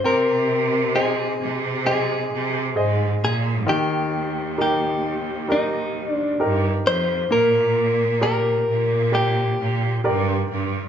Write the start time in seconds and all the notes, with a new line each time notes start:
0.04 C3 C4 A#4
0.95 G#4 C5 D#5
1.41 C3
1.85 G#4 C5 D#5
2.32 C3
2.76 G#2 G#4 C5 D#5
3.23 A#2 G#4
3.67 D#2 D#3 G4
4.58 D#4 G4 A#4
5.48 D#4 G4 A#4
6.10 D4
6.40 G2 D#4 G4 A#4
6.86 F2 C5
7.31 A#2 A#3 A#4
8.21 G4 A#4 D5
8.68 A#2
9.12 G4 A#4 D5
9.59 A#2
10.04 G2 G4 A#4 D5
10.50 G2